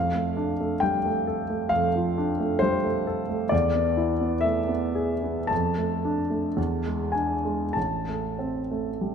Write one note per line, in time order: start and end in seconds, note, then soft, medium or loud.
0.00 1.69 F2 soft
0.00 0.82 F5 medium
0.15 0.51 A3 soft
0.37 0.74 D4 soft
0.61 0.97 A3 soft
0.80 1.06 G3 soft
0.80 1.72 G5 medium
1.06 1.42 A3 soft
1.27 1.64 A4 soft
1.50 1.86 A3 soft
1.69 3.48 F2 soft
1.69 2.60 F5 medium
1.96 2.31 F3 soft
2.18 2.53 D4 soft
2.40 2.75 A3 soft
2.59 2.84 G3 soft
2.59 3.51 C5 medium
2.84 3.20 A3 soft
3.07 3.43 A4 soft
3.29 3.52 A3 soft
3.49 5.46 E2 soft
3.49 4.42 D5 medium
3.75 4.11 B3 soft
3.97 4.34 E4 soft
4.21 4.58 B3 soft
4.41 4.68 A3 soft
4.41 5.49 E5 medium
4.68 5.12 B3 soft
4.95 5.39 G#4 soft
5.23 5.51 B3 soft
5.47 6.54 F2 soft
5.47 7.12 A5 medium
5.78 6.20 A3 soft
6.05 6.47 D4 soft
6.30 6.57 A3 soft
6.57 7.72 E2 soft
6.86 7.32 G#3 soft
7.12 7.63 D4 soft
7.12 7.75 G#5 soft
7.45 7.76 G#3 soft
7.73 9.15 A1 soft
7.73 9.15 A5 soft
8.09 8.58 A3 soft
8.39 8.89 C4 soft
8.71 9.15 A3 soft
9.01 9.15 G3 soft